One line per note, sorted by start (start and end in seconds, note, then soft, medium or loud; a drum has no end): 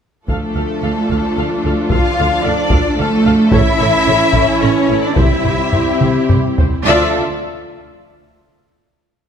0.27 0.36 D2 soft
0.27 3.49 F3 soft
0.27 1.87 A3 medium
0.27 3.48 D4 soft
0.27 3.49 D4 medium
0.27 3.49 F4 medium
0.27 5.13 A4 medium
0.27 1.87 A4 medium
0.27 1.88 A4 medium
0.27 0.38 A4 soft
0.27 0.38 F5 soft
0.27 taiko medium
0.55 0.63 D2 soft
0.55 0.64 A4 soft
0.55 0.64 F5 soft
0.82 0.90 D2 soft
0.82 0.91 A4 soft
0.82 0.92 F5 soft
1.09 1.18 D2 soft
1.09 1.19 A4 soft
1.09 1.19 F5 soft
1.09 taiko soft
1.38 1.46 D2 soft
1.38 1.46 A4 soft
1.38 1.46 F5 soft
1.64 1.72 D2 soft
1.64 1.74 A4 soft
1.64 1.73 F5 soft
1.90 1.99 D2 medium
1.90 2.45 F4 medium
1.90 2.00 A4 medium
1.90 2.43 F5 medium
1.90 2.44 F5 medium
1.90 2.00 F5 medium
1.90 taiko medium
2.19 2.27 D2 medium
2.19 2.27 A4 soft
2.19 2.27 F5 soft
2.45 2.53 D2 medium
2.45 2.99 D4 medium
2.45 2.53 A4 medium
2.45 2.99 D5 medium
2.45 2.53 F5 medium
2.70 2.80 D2 medium
2.70 2.80 A4 medium
2.70 2.80 F5 medium
2.70 taiko medium
2.98 3.07 D2 medium
2.98 3.52 A3 loud
2.98 3.52 A4 medium
2.98 3.07 A4 medium
2.98 3.53 A4 medium
2.98 3.07 F5 medium
3.26 3.34 D2 medium
3.26 3.34 A4 medium
3.26 3.34 F5 medium
3.51 3.62 A1 medium
3.51 5.13 E3 medium
3.51 5.13 C#4 medium
3.51 5.17 C#4 medium
3.51 4.62 E4 loud
3.51 6.87 E4 medium
3.51 3.61 A4 medium
3.51 3.61 C#5 medium
3.51 4.59 E5 loud
3.51 4.63 E5 loud
3.51 taiko loud
3.80 3.88 A1 medium
3.80 3.89 A4 medium
3.80 3.88 C#5 medium
4.07 4.15 A1 medium
4.07 4.15 A4 medium
4.07 4.15 C#5 medium
4.33 4.42 A1 medium
4.33 4.44 A4 medium
4.33 4.44 C#5 medium
4.33 taiko medium
4.61 4.70 A1 medium
4.61 5.03 C#4 medium
4.61 4.70 A4 medium
4.61 5.02 C#5 medium
4.61 5.03 C#5 medium
4.61 4.70 C#5 medium
4.90 4.98 A1 medium
4.90 4.98 A4 medium
4.90 4.98 C#5 soft
5.02 5.17 D4 medium
5.02 5.17 D5 medium
5.15 5.25 C2 medium
5.15 6.55 G3 medium
5.15 6.87 C4 medium
5.15 6.55 C4 medium
5.15 6.28 E4 medium
5.15 6.87 G4 medium
5.15 5.25 G4 medium
5.15 5.25 C5 soft
5.15 6.30 E5 medium
5.15 taiko medium
5.44 5.54 C2 soft
5.44 5.54 G4 soft
5.44 5.54 C5 soft
5.44 taiko low-mid soft
5.72 5.82 C2 soft
5.72 5.82 G4 soft
5.72 5.82 C5 soft
5.72 taiko low-mid medium
6.01 6.10 C2 soft
6.01 6.10 G4 soft
6.01 6.10 C5 soft
6.01 taiko mid medium
6.29 6.39 C2 soft
6.29 6.38 G4 soft
6.29 6.38 C5 soft
6.29 taiko low-mid medium
6.58 6.68 C2 soft
6.58 6.67 G4 soft
6.58 6.67 C5 soft
6.58 taiko low medium
6.85 7.19 D2 medium
6.85 7.11 F3 medium
6.85 7.18 A3 medium
6.85 7.19 D4 loud
6.85 7.19 F4 medium
6.85 7.11 F4 medium
6.85 7.19 F4 medium
6.85 7.19 A4 medium
6.85 7.19 D5 medium
6.85 7.20 D5 medium
6.85 7.18 E5 loud
6.85 7.19 E5 medium